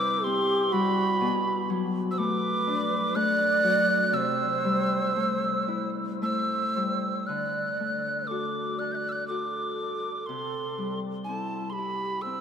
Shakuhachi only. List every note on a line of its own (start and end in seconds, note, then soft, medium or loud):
0.00 0.25 B4 medium
0.24 0.73 G4 medium
0.72 1.69 F#4 medium
2.11 2.19 C5 medium
2.17 3.18 B4 medium
3.16 4.18 D5 loud
4.17 5.93 C5 medium
6.23 7.28 C5 medium
7.26 8.31 D5 medium
8.30 8.79 A4 medium
8.78 8.95 D5 medium
8.94 9.11 D5 medium
8.94 8.98 E5 soft
9.11 9.26 D5 medium
9.27 10.27 A4 medium
10.27 11.00 A4 medium
11.24 11.73 E4 medium
11.72 12.24 G4 medium
11.72 11.77 A4 soft
12.22 12.41 C5 medium